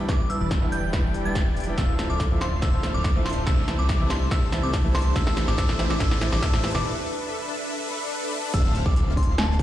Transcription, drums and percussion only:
0.09 kick loud
0.09 snare medium
0.09 closed hi-hat medium
0.30 closed hi-hat medium
0.51 kick medium
0.51 snare medium
0.51 closed hi-hat medium
0.72 closed hi-hat medium
0.93 kick loud
0.93 snare medium
0.93 closed hi-hat medium
1.14 closed hi-hat medium
1.35 kick loud
1.35 snare medium
1.35 closed hi-hat medium
1.57 closed hi-hat soft
1.60 closed hi-hat medium
1.64 closed hi-hat medium
1.78 kick loud
1.78 snare medium
1.78 closed hi-hat medium
1.99 snare medium
1.99 closed hi-hat medium
2.20 kick medium
2.20 snare medium
2.20 closed hi-hat medium
2.41 snare medium
2.41 closed hi-hat medium
2.62 kick medium
2.62 snare medium
2.62 closed hi-hat medium
2.83 snare medium
2.83 closed hi-hat medium
3.04 kick loud
3.04 snare medium
3.04 closed hi-hat medium
3.26 snare medium
3.26 closed hi-hat soft
3.29 closed hi-hat medium
3.33 closed hi-hat medium
3.47 kick loud
3.47 snare medium
3.47 closed hi-hat medium
3.68 snare medium
3.68 closed hi-hat medium
3.89 kick loud
3.89 snare medium
3.89 closed hi-hat medium
4.10 snare medium
4.10 closed hi-hat medium
4.31 kick loud
4.31 snare medium
4.31 closed hi-hat medium
4.52 snare medium
4.52 closed hi-hat medium
4.73 kick loud
4.73 snare medium
4.73 closed hi-hat medium
4.95 snare medium
4.95 closed hi-hat soft
4.98 closed hi-hat medium
5.02 closed hi-hat medium
5.16 kick loud
5.16 snare medium
5.16 closed hi-hat medium
5.27 snare medium
5.37 snare medium
5.37 closed hi-hat medium
5.48 snare medium
5.58 kick medium
5.58 snare medium
5.58 closed hi-hat medium
5.69 snare medium
5.79 snare loud
5.79 closed hi-hat medium
5.90 snare medium
6.00 kick loud
6.00 snare loud
6.00 closed hi-hat medium
6.11 snare medium
6.21 snare medium
6.21 closed hi-hat medium
6.32 snare medium
6.42 kick loud
6.42 snare loud
6.42 closed hi-hat medium
6.54 snare medium
6.64 snare loud
6.64 closed hi-hat soft
6.67 closed hi-hat medium
6.71 snare medium
6.71 closed hi-hat medium
8.54 kick loud
8.54 closed hi-hat medium
8.54 crash loud
8.75 closed hi-hat medium
8.86 kick loud
8.96 closed hi-hat medium
9.17 kick medium
9.17 closed hi-hat medium
9.23 closed hi-hat medium
9.38 snare loud
9.38 closed hi-hat medium
9.59 kick loud
9.59 closed hi-hat medium

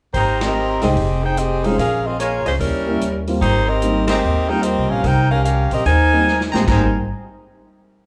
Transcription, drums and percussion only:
0.14 kick soft
0.14 open hi-hat soft
0.41 snare medium
0.41 ride medium
0.81 snare soft
0.81 open hi-hat soft
0.96 kick soft
0.96 open hi-hat soft
1.37 closed hi-hat soft
1.64 open hi-hat soft
1.78 kick soft
1.78 open hi-hat soft
2.20 closed hi-hat medium
2.46 open hi-hat soft
2.60 kick soft
2.60 open hi-hat soft
3.01 closed hi-hat soft
3.27 open hi-hat soft
3.41 kick soft
3.41 open hi-hat soft
3.82 closed hi-hat medium
4.08 snare medium
4.08 ride medium
4.63 closed hi-hat medium
5.04 kick soft
5.04 open hi-hat soft
5.45 closed hi-hat medium
5.71 open hi-hat soft
5.86 kick soft
5.86 open hi-hat soft
6.28 snare soft
6.41 snare medium
6.54 snare medium
6.68 kick medium
6.68 snare medium
6.68 crash medium

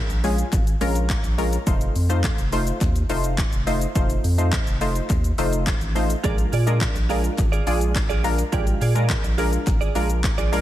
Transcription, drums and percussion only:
0.10 closed hi-hat medium
0.10 shaker medium
0.24 open hi-hat medium
0.24 shaker medium
0.38 closed hi-hat medium
0.38 shaker medium
0.53 kick loud
0.53 clap medium
0.53 closed hi-hat medium
0.53 shaker medium
0.67 closed hi-hat medium
0.67 shaker medium
0.81 open hi-hat medium
0.81 shaker medium
0.95 closed hi-hat medium
0.95 shaker medium
1.10 kick loud
1.10 clap medium
1.10 clap loud
1.10 closed hi-hat medium
1.10 shaker medium
1.24 closed hi-hat soft
1.24 shaker soft
1.38 open hi-hat medium
1.38 shaker medium
1.53 closed hi-hat medium
1.53 shaker medium
1.67 kick loud
1.67 closed hi-hat medium
1.67 shaker medium
1.81 closed hi-hat medium
1.81 shaker medium
1.96 open hi-hat medium
1.96 shaker medium
2.10 closed hi-hat medium
2.10 shaker medium
2.24 kick loud
2.24 clap loud
2.24 clap medium
2.24 closed hi-hat medium
2.24 shaker medium
2.38 closed hi-hat medium
2.38 shaker medium
2.52 open hi-hat medium
2.52 shaker medium
2.67 closed hi-hat medium
2.67 shaker medium
2.81 kick loud
2.81 clap medium
2.81 closed hi-hat medium
2.81 shaker medium
2.96 closed hi-hat medium
2.96 shaker medium
3.10 open hi-hat medium
3.10 shaker medium
3.24 closed hi-hat medium
3.24 shaker medium
3.38 kick loud
3.38 clap medium
3.38 clap loud
3.38 closed hi-hat medium
3.38 shaker medium
3.53 closed hi-hat soft
3.53 shaker soft
3.67 open hi-hat medium
3.67 shaker medium
3.81 closed hi-hat medium
3.81 shaker medium
3.95 kick loud
3.95 closed hi-hat medium
3.95 shaker medium
4.10 closed hi-hat medium
4.10 shaker medium
4.24 open hi-hat medium
4.24 shaker medium
4.38 closed hi-hat medium
4.38 shaker medium
4.52 kick loud
4.52 clap medium
4.52 clap loud
4.52 closed hi-hat medium
4.52 shaker medium
4.67 closed hi-hat medium
4.67 shaker medium
4.81 open hi-hat medium
4.81 shaker medium
4.96 closed hi-hat medium
4.96 shaker medium
5.10 kick loud
5.10 clap medium
5.10 closed hi-hat medium
5.10 shaker medium
5.24 closed hi-hat medium
5.24 shaker medium
5.38 open hi-hat medium
5.38 shaker medium
5.53 closed hi-hat medium
5.53 shaker medium
5.67 kick loud
5.67 clap medium
5.67 clap loud
5.67 closed hi-hat medium
5.67 shaker medium
5.81 closed hi-hat soft
5.81 shaker soft
5.96 open hi-hat medium
5.96 shaker medium
6.10 closed hi-hat medium
6.10 shaker medium
6.24 kick loud
6.24 closed hi-hat medium
6.24 shaker medium
6.38 closed hi-hat medium
6.38 shaker medium
6.53 open hi-hat medium
6.53 shaker medium
6.67 closed hi-hat medium
6.67 shaker medium
6.81 kick loud
6.81 clap medium
6.81 clap loud
6.81 closed hi-hat medium
6.81 shaker medium
6.96 closed hi-hat medium
6.96 shaker medium
7.10 open hi-hat medium
7.10 shaker medium
7.24 closed hi-hat medium
7.24 shaker medium
7.38 kick loud
7.38 clap medium
7.38 closed hi-hat medium
7.38 shaker medium
7.53 closed hi-hat medium
7.53 shaker medium
7.67 open hi-hat medium
7.67 shaker medium
7.81 closed hi-hat medium
7.81 shaker medium
7.95 kick loud
7.95 clap medium
7.95 clap loud
7.95 closed hi-hat medium
7.95 shaker medium
8.10 closed hi-hat soft
8.10 shaker soft
8.24 open hi-hat medium
8.24 shaker medium
8.39 closed hi-hat medium
8.39 shaker medium
8.53 kick loud
8.53 closed hi-hat medium
8.53 shaker medium
8.67 closed hi-hat medium
8.67 shaker medium
8.81 open hi-hat medium
8.81 shaker medium
8.96 closed hi-hat medium
8.96 shaker medium
9.10 kick loud
9.10 clap medium
9.10 clap loud
9.10 closed hi-hat medium
9.10 shaker medium
9.24 closed hi-hat medium
9.24 shaker medium
9.38 open hi-hat medium
9.38 shaker medium
9.53 closed hi-hat medium
9.53 shaker medium
9.67 kick loud
9.67 clap medium
9.67 closed hi-hat medium
9.67 shaker medium
9.81 closed hi-hat medium
9.81 shaker medium
9.95 open hi-hat medium
9.95 shaker medium
10.10 closed hi-hat medium
10.10 shaker medium
10.24 kick loud
10.24 clap medium
10.24 clap loud
10.24 closed hi-hat medium
10.24 shaker medium
10.38 closed hi-hat soft
10.38 shaker soft
10.53 open hi-hat medium
10.53 shaker medium

